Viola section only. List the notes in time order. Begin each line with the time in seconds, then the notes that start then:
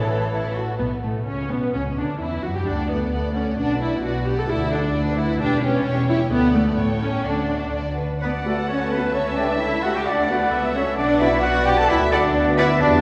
Already playing: E3
0.79 B3
1.03 A3
1.26 C#4
1.50 B3
1.73 C#4
1.96 D4
2.20 E4
2.43 F#4
2.55 G4
2.66 D4
2.89 B3
3.35 C#4
3.58 D4
3.81 E4
4.03 F#4
4.25 G4
4.38 A4
4.49 E4
4.71 D4
5.17 E4
5.40 D4
5.63 C#4
6.09 E4
6.32 B3
6.56 A3
7.02 C#4
7.27 D4
8.22 B4 D5
8.69 A4
9.15 E5
9.61 A4
10.06 A4 D5
10.53 E5
10.98 B4 D5
11.43 B4 D5
12.12 A4 D5
12.58 B4 D5